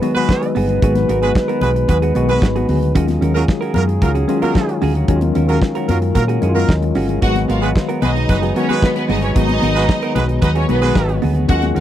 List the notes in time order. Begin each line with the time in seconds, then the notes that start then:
Already playing: D#3 F#3 G#3 B3 D#4 F#4 B4
0.00 D#3 F#3 G#3 B3 F#4 G#4, closed hi-hat, muted conga
0.15 G#3 F#4 B4, muted clean electric guitar stroke, closed hi-hat, high conga
0.29 muted clean electric guitar stroke, kick, snare, muted conga
0.42 muted clean electric guitar stroke, closed hi-hat
0.55 G1 B3 F#4 G#4, open hi-hat
0.69 B3 F#4 G#4, closed hi-hat
0.82 G#1 D#3 F#3 G#3 B3 F#4 G#4, kick, closed hi-hat, muted conga
0.95 snare, closed hi-hat, high conga
1.09 G#1 B3 F#4 A#4, closed hi-hat
1.22 G#3 B3 F#4 G#4 B4, closed hi-hat
1.35 kick, snare, muted conga
1.48 B3 F#4 A#4, closed hi-hat
1.61 B1 G#3 F#4 B4, muted clean electric guitar stroke, closed hi-hat, muted conga, high conga, low conga
1.75 muted clean electric guitar stroke, closed hi-hat
1.88 D#2 G#3 F#4 B4, muted clean electric guitar stroke, kick, closed hi-hat, muted conga, low conga
2.02 B3 F#4 G#4, closed hi-hat
2.15 B1 D#3 F#3 G#3 B3 F#4 G#4, closed hi-hat, muted conga
2.29 G#3 F#4 B4, closed hi-hat, high conga
2.42 G#1, muted clean electric guitar stroke, kick, snare, muted conga
2.56 B3 F#4 G#4, closed hi-hat
2.69 D2 B3 F#4 G#4, open hi-hat, muted conga
2.81 muted clean electric guitar stroke, closed hi-hat
2.95 D#2 D#3 F#3 G#3 C#4 F4 F#4 G#4, kick, closed hi-hat
3.08 muted clean electric guitar stroke, snare, closed hi-hat, high conga
3.21 D#2 C#4 F#4 A#4, closed hi-hat, muted conga
3.34 F#3 C#4 F4 F#4 G#4 A#4, closed hi-hat
3.48 muted clean electric guitar stroke, kick, snare, muted conga
3.61 C#4 F#4 A#4, closed hi-hat
3.74 F#2 F#3 F4 A#4, closed hi-hat, high conga, low conga
3.88 muted clean electric guitar stroke, closed hi-hat
4.02 C#2 F#3 F4 A#4, muted clean electric guitar stroke, kick, closed hi-hat, muted conga, low conga
4.15 C#4 F#4 G#4, closed hi-hat
4.28 D#3 F#3 G#3 C#4 F4 F#4 G#4, closed hi-hat, muted conga
4.41 F#3 F4 A#4, muted clean electric guitar stroke, closed hi-hat, high conga
4.55 muted clean electric guitar stroke, kick, snare, muted conga
4.68 muted clean electric guitar stroke, closed hi-hat
4.82 D2 C#4 F#4 G#4, open hi-hat
4.95 C#4 F#4 G#4, closed hi-hat
5.08 D#2 D#3 F#3 G#3 C#4 D#4 F#4 G#4 A#4, kick, closed hi-hat
5.16 F4
5.21 muted clean electric guitar stroke, closed hi-hat, high conga
5.35 D#2 C#4 F#4 A#4, closed hi-hat, muted conga, high conga
5.48 F#3 C#4 F4 F#4 G#4 A#4, closed hi-hat
5.62 muted clean electric guitar stroke, kick, snare
5.75 C#4 F#4 A#4, closed hi-hat
5.88 F#2 F#3 F4 A#4, muted clean electric guitar stroke, closed hi-hat, muted conga, high conga, low conga
6.02 muted clean electric guitar stroke, closed hi-hat
6.15 A#2 F#3 F4 A#4, muted clean electric guitar stroke, kick, closed hi-hat, muted conga, low conga
6.28 C#4 F#4 G#4, closed hi-hat
6.41 F#2 D#3 F#3 G#3 C#4 E4 F#4 G#4 F5, closed hi-hat, muted conga
6.49 F4
6.55 F#3 F4 A#4, muted clean electric guitar stroke, closed hi-hat, high conga
6.69 D#2 D#5, muted clean electric guitar stroke, kick, snare, muted conga
6.82 muted clean electric guitar stroke, closed hi-hat
6.95 G1 C#4 F#4 G#4, open hi-hat, muted conga
7.09 C#4 F#4 G#4, closed hi-hat
7.22 G#1 D#3 F#3 G#3 B3 D#4 F#4 G#4 B4 F#5, kick, closed hi-hat
7.35 muted clean electric guitar stroke, snare, closed hi-hat, high conga
7.48 G#1 B3 F4 F#4 A#4 F5, closed hi-hat, muted conga
7.62 G#3 B3 F#4 G#4 B4, closed hi-hat
7.76 muted clean electric guitar stroke, kick, snare, muted conga
7.89 B3 F#4 A#4, closed hi-hat
8.02 B1 G#3 D#4 F#4 B4 D#5, closed hi-hat, muted conga, high conga, low conga
8.15 muted clean electric guitar stroke, closed hi-hat
8.29 F#1 G#3 F#4 B4, muted clean electric guitar stroke, kick, closed hi-hat, muted conga, low conga
8.42 B3 F#4 G#4, closed hi-hat
8.55 D#3 F#3 G#3 B3 C#4 F#4 G#4 C#5, closed hi-hat
8.69 G#3 F#4 B4, muted clean electric guitar stroke, closed hi-hat, high conga
8.82 B3 B4, muted clean electric guitar stroke, kick, snare, muted conga
8.95 B3 B4, muted clean electric guitar stroke, closed hi-hat
9.09 G1 B3 D#4 F#4 G#4 D#5, open hi-hat, muted conga
9.22 B3 C#4 F#4 G#4 C#5, closed hi-hat
9.35 G#1 D#3 F#3 G#3 B3 D#4 F#4 G#4 D#5, kick, closed hi-hat, muted conga
9.49 muted clean electric guitar stroke, closed hi-hat, high conga
9.62 G#1 B3 F#4 A#4, closed hi-hat, muted conga
9.75 G#3 B3 F#4 G#4 B4, closed hi-hat
9.89 kick, snare, muted conga
10.02 B3 F#4 A#4, closed hi-hat
10.15 B1 G#3 F#4 B4, closed hi-hat, muted conga, high conga, low conga
10.28 muted clean electric guitar stroke, closed hi-hat
10.42 D#2 G#3 D#4 F#4 B4 D#5, muted clean electric guitar stroke, kick, closed hi-hat, muted conga, low conga
10.55 B3 C#4 F#4 G#4 C#5, closed hi-hat
10.68 B1 D#3 F#3 G#3 B3 F#4 G#4 B4, closed hi-hat, muted conga
10.82 G#3 F#4 B4, muted clean electric guitar stroke, closed hi-hat, high conga
10.95 G#1, muted clean electric guitar stroke, kick, snare, muted conga
11.09 muted clean electric guitar stroke, closed hi-hat
11.22 D2 B3 F#4 G#4, open hi-hat
11.35 B3 F#4 G#4, closed hi-hat
11.48 D#2 D#3 F#3 G#3 C#4 F4 F#4 G#4 F#5, kick, closed hi-hat, muted conga
11.62 muted clean electric guitar stroke, snare, closed hi-hat, high conga
11.75 D#2 C#4 F4 F#4 A#4 F5, closed hi-hat